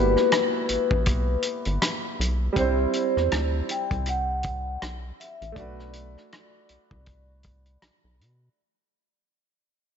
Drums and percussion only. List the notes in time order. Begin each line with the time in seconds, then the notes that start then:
0.17 cross-stick
0.32 cross-stick, closed hi-hat
0.69 closed hi-hat
0.91 kick
1.06 kick, closed hi-hat
1.42 closed hi-hat
1.65 closed hi-hat
1.82 cross-stick, closed hi-hat
2.21 closed hi-hat
2.56 kick, closed hi-hat
2.93 closed hi-hat
3.17 cross-stick
3.32 cross-stick, closed hi-hat
3.69 closed hi-hat
3.91 kick, closed hi-hat
4.06 closed hi-hat
4.43 kick, closed hi-hat
4.82 cross-stick, closed hi-hat
5.21 closed hi-hat
5.42 closed hi-hat
5.56 kick, closed hi-hat
5.79 cross-stick
5.93 closed hi-hat
6.18 cross-stick
6.32 cross-stick, closed hi-hat
6.69 closed hi-hat
6.91 kick
7.06 kick, closed hi-hat
7.43 kick, closed hi-hat
7.66 closed hi-hat
7.82 cross-stick, closed hi-hat
8.21 closed hi-hat